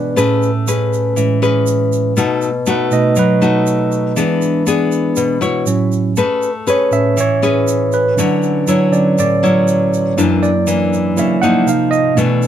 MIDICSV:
0, 0, Header, 1, 4, 480
1, 0, Start_track
1, 0, Key_signature, 3, "major"
1, 0, Tempo, 499584
1, 162, Time_signature, 4, 2, 24, 8
1, 11982, End_track
2, 0, Start_track
2, 0, Title_t, "Nylon-string guitar"
2, 0, Program_c, 0, 24
2, 0, Note_on_c, 0, 47, 73
2, 0, Note_on_c, 0, 59, 63
2, 0, Note_on_c, 0, 62, 60
2, 0, Note_on_c, 0, 68, 66
2, 124, Note_off_c, 0, 59, 0
2, 126, Note_off_c, 0, 62, 0
2, 126, Note_off_c, 0, 68, 0
2, 139, Note_off_c, 0, 47, 0
2, 157, Note_on_c, 0, 57, 69
2, 161, Note_on_c, 0, 61, 53
2, 165, Note_on_c, 0, 71, 60
2, 167, Note_on_c, 0, 68, 52
2, 470, Note_off_c, 0, 61, 0
2, 471, Note_off_c, 0, 68, 0
2, 473, Note_off_c, 0, 71, 0
2, 648, Note_on_c, 0, 61, 48
2, 653, Note_on_c, 0, 68, 54
2, 655, Note_on_c, 0, 71, 58
2, 1096, Note_off_c, 0, 57, 0
2, 1117, Note_on_c, 0, 52, 61
2, 1327, Note_off_c, 0, 61, 0
2, 1330, Note_off_c, 0, 68, 0
2, 1330, Note_off_c, 0, 71, 0
2, 1364, Note_on_c, 0, 61, 65
2, 1368, Note_on_c, 0, 68, 66
2, 1370, Note_on_c, 0, 71, 68
2, 2045, Note_off_c, 0, 61, 0
2, 2047, Note_off_c, 0, 68, 0
2, 2047, Note_off_c, 0, 71, 0
2, 2056, Note_off_c, 0, 52, 0
2, 2081, Note_on_c, 0, 47, 65
2, 2085, Note_on_c, 0, 57, 55
2, 2090, Note_on_c, 0, 63, 56
2, 2091, Note_on_c, 0, 66, 57
2, 2392, Note_off_c, 0, 57, 0
2, 2393, Note_off_c, 0, 63, 0
2, 2396, Note_off_c, 0, 66, 0
2, 2561, Note_on_c, 0, 57, 61
2, 2567, Note_on_c, 0, 63, 52
2, 2571, Note_on_c, 0, 66, 65
2, 3019, Note_off_c, 0, 47, 0
2, 3040, Note_off_c, 0, 57, 0
2, 3040, Note_on_c, 0, 54, 69
2, 3041, Note_off_c, 0, 63, 0
2, 3044, Note_off_c, 0, 66, 0
2, 3281, Note_on_c, 0, 57, 61
2, 3286, Note_on_c, 0, 63, 67
2, 3293, Note_on_c, 0, 66, 65
2, 3964, Note_off_c, 0, 57, 0
2, 3966, Note_off_c, 0, 63, 0
2, 3969, Note_off_c, 0, 66, 0
2, 3977, Note_off_c, 0, 54, 0
2, 3999, Note_on_c, 0, 52, 66
2, 4001, Note_on_c, 0, 59, 47
2, 4005, Note_on_c, 0, 62, 61
2, 4009, Note_on_c, 0, 68, 52
2, 4443, Note_off_c, 0, 59, 0
2, 4443, Note_off_c, 0, 62, 0
2, 4447, Note_off_c, 0, 68, 0
2, 4481, Note_on_c, 0, 59, 51
2, 4485, Note_on_c, 0, 62, 53
2, 4494, Note_on_c, 0, 68, 59
2, 4938, Note_off_c, 0, 52, 0
2, 4963, Note_on_c, 0, 47, 74
2, 5164, Note_off_c, 0, 59, 0
2, 5167, Note_off_c, 0, 62, 0
2, 5168, Note_off_c, 0, 68, 0
2, 5196, Note_on_c, 0, 64, 64
2, 5201, Note_on_c, 0, 66, 59
2, 5206, Note_on_c, 0, 73, 70
2, 5419, Note_off_c, 0, 47, 0
2, 5881, Note_off_c, 0, 64, 0
2, 5884, Note_off_c, 0, 66, 0
2, 5885, Note_off_c, 0, 73, 0
2, 5928, Note_on_c, 0, 57, 63
2, 5930, Note_on_c, 0, 61, 47
2, 5936, Note_on_c, 0, 68, 45
2, 5937, Note_on_c, 0, 71, 59
2, 6236, Note_off_c, 0, 61, 0
2, 6237, Note_off_c, 0, 68, 0
2, 6239, Note_off_c, 0, 71, 0
2, 6405, Note_on_c, 0, 61, 48
2, 6412, Note_on_c, 0, 68, 49
2, 6412, Note_on_c, 0, 71, 54
2, 6861, Note_off_c, 0, 57, 0
2, 6882, Note_off_c, 0, 61, 0
2, 6884, Note_off_c, 0, 68, 0
2, 6885, Note_off_c, 0, 71, 0
2, 6887, Note_on_c, 0, 52, 70
2, 7133, Note_on_c, 0, 61, 56
2, 7138, Note_on_c, 0, 68, 65
2, 7142, Note_on_c, 0, 71, 68
2, 7810, Note_off_c, 0, 61, 0
2, 7812, Note_off_c, 0, 68, 0
2, 7814, Note_off_c, 0, 71, 0
2, 7821, Note_off_c, 0, 52, 0
2, 7860, Note_on_c, 0, 50, 65
2, 7869, Note_on_c, 0, 54, 47
2, 7872, Note_on_c, 0, 61, 51
2, 7872, Note_on_c, 0, 64, 54
2, 8296, Note_off_c, 0, 54, 0
2, 8297, Note_off_c, 0, 61, 0
2, 8299, Note_off_c, 0, 64, 0
2, 8335, Note_on_c, 0, 54, 55
2, 8341, Note_on_c, 0, 61, 47
2, 8343, Note_on_c, 0, 64, 55
2, 8789, Note_off_c, 0, 50, 0
2, 8807, Note_off_c, 0, 54, 0
2, 8808, Note_off_c, 0, 61, 0
2, 8810, Note_off_c, 0, 64, 0
2, 8824, Note_on_c, 0, 45, 69
2, 9057, Note_on_c, 0, 54, 56
2, 9062, Note_on_c, 0, 61, 57
2, 9065, Note_on_c, 0, 64, 74
2, 9732, Note_off_c, 0, 54, 0
2, 9735, Note_off_c, 0, 61, 0
2, 9735, Note_off_c, 0, 64, 0
2, 9750, Note_off_c, 0, 45, 0
2, 9777, Note_on_c, 0, 42, 69
2, 9780, Note_on_c, 0, 52, 53
2, 9782, Note_on_c, 0, 58, 57
2, 9786, Note_on_c, 0, 62, 65
2, 10081, Note_off_c, 0, 52, 0
2, 10083, Note_off_c, 0, 58, 0
2, 10083, Note_off_c, 0, 62, 0
2, 10251, Note_on_c, 0, 52, 59
2, 10256, Note_on_c, 0, 58, 57
2, 10260, Note_on_c, 0, 62, 50
2, 10707, Note_off_c, 0, 42, 0
2, 10735, Note_on_c, 0, 49, 64
2, 10930, Note_off_c, 0, 52, 0
2, 10931, Note_off_c, 0, 58, 0
2, 10934, Note_off_c, 0, 62, 0
2, 10979, Note_on_c, 0, 53, 64
2, 10982, Note_on_c, 0, 58, 60
2, 10988, Note_on_c, 0, 63, 73
2, 11186, Note_off_c, 0, 49, 0
2, 11673, Note_off_c, 0, 53, 0
2, 11675, Note_off_c, 0, 58, 0
2, 11677, Note_off_c, 0, 63, 0
2, 11691, Note_on_c, 0, 47, 64
2, 11692, Note_on_c, 0, 52, 50
2, 11696, Note_on_c, 0, 57, 58
2, 11700, Note_on_c, 0, 62, 59
2, 11982, Note_off_c, 0, 47, 0
2, 11982, Note_off_c, 0, 52, 0
2, 11982, Note_off_c, 0, 57, 0
2, 11982, Note_off_c, 0, 62, 0
2, 11982, End_track
3, 0, Start_track
3, 0, Title_t, "Tine electric piano"
3, 0, Program_c, 1, 4
3, 0, Control_c, 1, 64, 127
3, 0, Note_on_c, 1, 52, 40
3, 0, Note_on_c, 1, 56, 35
3, 0, Note_on_c, 1, 62, 44
3, 0, Note_on_c, 1, 71, 62
3, 0, Note_on_c, 1, 74, 66
3, 167, Note_on_c, 1, 45, 42
3, 176, Control_c, 1, 64, 0
3, 177, Note_off_c, 1, 56, 0
3, 180, Note_on_c, 1, 61, 42
3, 181, Note_off_c, 1, 62, 0
3, 182, Note_off_c, 1, 71, 0
3, 182, Note_off_c, 1, 74, 0
3, 184, Note_off_c, 1, 52, 0
3, 362, Control_c, 1, 64, 127
3, 484, Note_off_c, 1, 45, 0
3, 491, Note_off_c, 1, 61, 0
3, 1122, Note_on_c, 1, 45, 37
3, 1128, Note_on_c, 1, 56, 36
3, 1133, Note_on_c, 1, 61, 39
3, 1338, Note_off_c, 1, 45, 0
3, 1341, Note_off_c, 1, 56, 0
3, 1344, Note_off_c, 1, 61, 0
3, 2093, Control_c, 1, 64, 0
3, 2284, Control_c, 1, 64, 127
3, 2597, Note_on_c, 1, 71, 58
3, 2798, Note_on_c, 1, 47, 41
3, 2807, Note_on_c, 1, 57, 40
3, 2810, Note_on_c, 1, 63, 39
3, 2813, Note_off_c, 1, 71, 0
3, 2814, Note_on_c, 1, 75, 62
3, 3041, Note_off_c, 1, 75, 0
3, 3067, Note_on_c, 1, 71, 58
3, 3288, Note_off_c, 1, 71, 0
3, 3484, Note_off_c, 1, 47, 0
3, 3489, Note_off_c, 1, 57, 0
3, 3490, Note_off_c, 1, 63, 0
3, 4001, Note_on_c, 1, 52, 42
3, 4006, Note_on_c, 1, 56, 40
3, 4012, Note_on_c, 1, 62, 41
3, 4014, Control_c, 1, 64, 0
3, 4185, Control_c, 1, 64, 127
3, 4321, Note_off_c, 1, 52, 0
3, 4323, Note_off_c, 1, 56, 0
3, 4327, Note_off_c, 1, 62, 0
3, 5441, Note_on_c, 1, 45, 40
3, 5443, Note_on_c, 1, 54, 39
3, 5450, Note_on_c, 1, 61, 47
3, 5456, Control_c, 1, 64, 0
3, 5616, Control_c, 1, 64, 127
3, 5898, Note_off_c, 1, 45, 0
3, 5899, Note_off_c, 1, 54, 0
3, 5902, Note_off_c, 1, 61, 0
3, 5934, Control_c, 1, 64, 0
3, 6097, Control_c, 1, 64, 127
3, 6435, Note_on_c, 1, 73, 61
3, 6641, Note_on_c, 1, 45, 37
3, 6652, Note_off_c, 1, 73, 0
3, 6654, Note_on_c, 1, 61, 37
3, 6656, Note_on_c, 1, 76, 66
3, 6883, Note_off_c, 1, 76, 0
3, 6923, Note_on_c, 1, 73, 61
3, 6961, Note_off_c, 1, 45, 0
3, 6968, Note_off_c, 1, 61, 0
3, 7055, Note_off_c, 1, 73, 0
3, 7627, Note_on_c, 1, 71, 62
3, 7847, Note_on_c, 1, 50, 40
3, 7853, Note_on_c, 1, 54, 37
3, 7855, Note_on_c, 1, 61, 43
3, 7856, Control_c, 1, 64, 0
3, 8027, Control_c, 1, 64, 127
3, 8164, Note_off_c, 1, 50, 0
3, 8168, Note_off_c, 1, 54, 0
3, 8169, Note_off_c, 1, 61, 0
3, 8297, Note_off_c, 1, 71, 0
3, 8354, Note_on_c, 1, 73, 56
3, 8568, Note_on_c, 1, 50, 32
3, 8568, Note_on_c, 1, 54, 29
3, 8572, Note_off_c, 1, 73, 0
3, 8575, Note_on_c, 1, 61, 36
3, 8575, Note_on_c, 1, 74, 60
3, 8782, Note_off_c, 1, 50, 0
3, 8782, Note_off_c, 1, 54, 0
3, 8786, Note_off_c, 1, 61, 0
3, 8802, Note_off_c, 1, 74, 0
3, 8838, Note_on_c, 1, 74, 57
3, 9054, Note_off_c, 1, 74, 0
3, 9066, Note_on_c, 1, 73, 62
3, 9288, Note_off_c, 1, 73, 0
3, 9770, Note_on_c, 1, 54, 44
3, 9774, Note_on_c, 1, 58, 35
3, 9775, Control_c, 1, 64, 0
3, 9783, Note_on_c, 1, 64, 49
3, 9936, Control_c, 1, 64, 127
3, 10017, Note_on_c, 1, 74, 68
3, 10451, Note_off_c, 1, 54, 0
3, 10453, Note_off_c, 1, 58, 0
3, 10458, Note_off_c, 1, 64, 0
3, 10693, Note_off_c, 1, 74, 0
3, 10723, Note_on_c, 1, 54, 36
3, 10728, Note_on_c, 1, 58, 33
3, 10732, Note_on_c, 1, 64, 39
3, 10755, Note_on_c, 1, 76, 64
3, 10940, Note_off_c, 1, 54, 0
3, 10943, Note_off_c, 1, 58, 0
3, 10945, Note_off_c, 1, 64, 0
3, 10968, Note_on_c, 1, 78, 73
3, 10973, Note_off_c, 1, 76, 0
3, 11200, Note_off_c, 1, 78, 0
3, 11205, Note_on_c, 1, 48, 40
3, 11211, Note_on_c, 1, 58, 35
3, 11212, Note_on_c, 1, 63, 47
3, 11216, Control_c, 1, 64, 0
3, 11232, Note_on_c, 1, 77, 54
3, 11383, Control_c, 1, 64, 127
3, 11441, Note_on_c, 1, 75, 76
3, 11452, Note_off_c, 1, 77, 0
3, 11525, Note_off_c, 1, 48, 0
3, 11528, Note_off_c, 1, 58, 0
3, 11528, Note_off_c, 1, 63, 0
3, 11586, Note_off_c, 1, 75, 0
3, 11676, Note_on_c, 1, 47, 43
3, 11685, Note_on_c, 1, 57, 38
3, 11688, Note_on_c, 1, 62, 47
3, 11698, Control_c, 1, 64, 0
3, 11870, Control_c, 1, 64, 127
3, 11982, Note_off_c, 1, 47, 0
3, 11982, Note_off_c, 1, 57, 0
3, 11982, Note_off_c, 1, 62, 0
3, 11982, End_track
4, 0, Start_track
4, 0, Title_t, "Drums"
4, 167, Note_on_c, 9, 82, 56
4, 263, Note_off_c, 9, 82, 0
4, 407, Note_on_c, 9, 82, 24
4, 503, Note_off_c, 9, 82, 0
4, 649, Note_on_c, 9, 82, 56
4, 745, Note_off_c, 9, 82, 0
4, 895, Note_on_c, 9, 82, 24
4, 991, Note_off_c, 9, 82, 0
4, 1124, Note_on_c, 9, 82, 58
4, 1220, Note_off_c, 9, 82, 0
4, 1372, Note_on_c, 9, 82, 22
4, 1468, Note_off_c, 9, 82, 0
4, 1601, Note_on_c, 9, 82, 56
4, 1697, Note_off_c, 9, 82, 0
4, 1852, Note_on_c, 9, 82, 28
4, 1948, Note_off_c, 9, 82, 0
4, 2085, Note_on_c, 9, 82, 55
4, 2181, Note_off_c, 9, 82, 0
4, 2324, Note_on_c, 9, 82, 23
4, 2420, Note_off_c, 9, 82, 0
4, 2559, Note_on_c, 9, 82, 59
4, 2656, Note_off_c, 9, 82, 0
4, 2802, Note_on_c, 9, 82, 25
4, 2898, Note_off_c, 9, 82, 0
4, 3035, Note_on_c, 9, 82, 64
4, 3131, Note_off_c, 9, 82, 0
4, 3285, Note_on_c, 9, 82, 26
4, 3381, Note_off_c, 9, 82, 0
4, 3523, Note_on_c, 9, 82, 51
4, 3620, Note_off_c, 9, 82, 0
4, 3764, Note_on_c, 9, 82, 27
4, 3860, Note_off_c, 9, 82, 0
4, 4004, Note_on_c, 9, 82, 53
4, 4100, Note_off_c, 9, 82, 0
4, 4245, Note_on_c, 9, 82, 24
4, 4341, Note_off_c, 9, 82, 0
4, 4485, Note_on_c, 9, 82, 60
4, 4582, Note_off_c, 9, 82, 0
4, 4726, Note_on_c, 9, 82, 24
4, 4822, Note_off_c, 9, 82, 0
4, 4960, Note_on_c, 9, 82, 59
4, 5056, Note_off_c, 9, 82, 0
4, 5208, Note_on_c, 9, 82, 25
4, 5304, Note_off_c, 9, 82, 0
4, 5444, Note_on_c, 9, 82, 54
4, 5540, Note_off_c, 9, 82, 0
4, 5688, Note_on_c, 9, 82, 27
4, 5784, Note_off_c, 9, 82, 0
4, 5924, Note_on_c, 9, 82, 56
4, 6020, Note_off_c, 9, 82, 0
4, 6172, Note_on_c, 9, 82, 22
4, 6268, Note_off_c, 9, 82, 0
4, 6413, Note_on_c, 9, 82, 58
4, 6509, Note_off_c, 9, 82, 0
4, 6651, Note_on_c, 9, 82, 26
4, 6747, Note_off_c, 9, 82, 0
4, 6893, Note_on_c, 9, 82, 53
4, 6989, Note_off_c, 9, 82, 0
4, 7137, Note_on_c, 9, 82, 23
4, 7233, Note_off_c, 9, 82, 0
4, 7376, Note_on_c, 9, 82, 54
4, 7472, Note_off_c, 9, 82, 0
4, 7611, Note_on_c, 9, 82, 25
4, 7708, Note_off_c, 9, 82, 0
4, 7863, Note_on_c, 9, 82, 53
4, 7959, Note_off_c, 9, 82, 0
4, 8096, Note_on_c, 9, 82, 23
4, 8192, Note_off_c, 9, 82, 0
4, 8336, Note_on_c, 9, 82, 64
4, 8432, Note_off_c, 9, 82, 0
4, 8583, Note_on_c, 9, 82, 22
4, 8679, Note_off_c, 9, 82, 0
4, 8825, Note_on_c, 9, 82, 51
4, 8921, Note_off_c, 9, 82, 0
4, 9074, Note_on_c, 9, 82, 24
4, 9170, Note_off_c, 9, 82, 0
4, 9299, Note_on_c, 9, 82, 51
4, 9395, Note_off_c, 9, 82, 0
4, 9545, Note_on_c, 9, 82, 25
4, 9642, Note_off_c, 9, 82, 0
4, 9785, Note_on_c, 9, 82, 60
4, 9881, Note_off_c, 9, 82, 0
4, 10026, Note_on_c, 9, 82, 23
4, 10122, Note_off_c, 9, 82, 0
4, 10253, Note_on_c, 9, 82, 64
4, 10349, Note_off_c, 9, 82, 0
4, 10505, Note_on_c, 9, 82, 26
4, 10602, Note_off_c, 9, 82, 0
4, 10736, Note_on_c, 9, 82, 56
4, 10832, Note_off_c, 9, 82, 0
4, 10982, Note_on_c, 9, 82, 27
4, 11078, Note_off_c, 9, 82, 0
4, 11221, Note_on_c, 9, 82, 53
4, 11317, Note_off_c, 9, 82, 0
4, 11459, Note_on_c, 9, 82, 28
4, 11555, Note_off_c, 9, 82, 0
4, 11698, Note_on_c, 9, 82, 55
4, 11794, Note_off_c, 9, 82, 0
4, 11939, Note_on_c, 9, 82, 26
4, 11982, Note_off_c, 9, 82, 0
4, 11982, End_track
0, 0, End_of_file